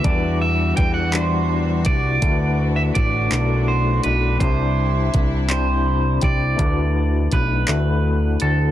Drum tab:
HH |x-xx-x|x-xx-x|x-xx-x|x-xx-x|
CP |---x--|---x--|---x--|---x--|
BD |o-o--o|o-o---|o-o--o|o-o---|